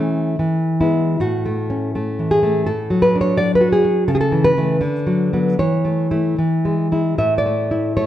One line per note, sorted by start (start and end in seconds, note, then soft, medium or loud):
0.00 0.36 E3 medium
0.00 0.35 A3 medium
0.00 0.35 C#4 medium
0.00 0.77 A4 medium
0.00 0.76 E5 medium
0.39 1.18 E3 medium
0.81 1.17 G#3 soft
0.81 1.17 B3 soft
0.81 1.19 E4 medium
1.20 2.63 A2 medium
1.20 2.27 F#4 medium
1.46 1.94 A3 medium
1.70 2.67 C#4 medium
1.95 2.42 A3 medium
2.19 2.67 E3 medium
2.31 2.66 G#4 medium
2.43 2.67 A3 medium
2.66 3.84 A2 medium
2.66 3.01 A4 medium
2.90 3.37 F#3 medium
3.02 3.20 B4 loud
3.15 4.09 D4 medium
3.21 3.38 C#5 loud
3.37 3.83 F#3 medium
3.37 3.55 D5 loud
3.55 3.72 B4 medium
3.61 4.08 F#4 medium
3.72 4.07 G#4 medium
3.85 4.08 F#3 medium
4.08 4.80 C#3 medium
4.08 4.14 A4 medium
4.15 4.20 G#4 medium
4.21 4.43 A4 medium
4.32 4.56 E3 medium
4.44 5.55 B4 loud
4.57 4.80 E3 medium
4.57 4.80 A3 medium
4.81 5.56 D3 medium
5.07 5.32 F#3 medium
5.33 5.56 F#3 medium
5.33 5.56 B3 medium
5.59 6.37 E3 medium
5.59 6.36 C#5 medium
5.85 6.10 A3 medium
6.11 6.36 A3 medium
6.11 6.36 E4 medium
6.38 7.17 E3 medium
6.65 6.91 G#3 soft
6.92 7.16 G#3 soft
6.92 7.17 E4 soft
7.18 8.06 A2 medium
7.18 7.38 E5 medium
7.38 7.94 D5 medium
7.46 7.96 A3 soft
7.71 8.06 E4 medium
7.97 8.06 A3 soft
7.97 8.06 C#5 medium